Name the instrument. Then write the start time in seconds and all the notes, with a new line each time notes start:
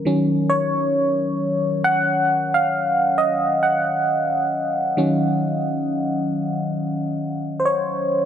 fm electric piano
0.05 D#3 F#3 C#4
0.50 C#5
1.84 F#5
2.54 F5
3.18 D#5
3.63 F#5
4.97 D#3 F#3 C#4
7.60 C5
7.66 C#5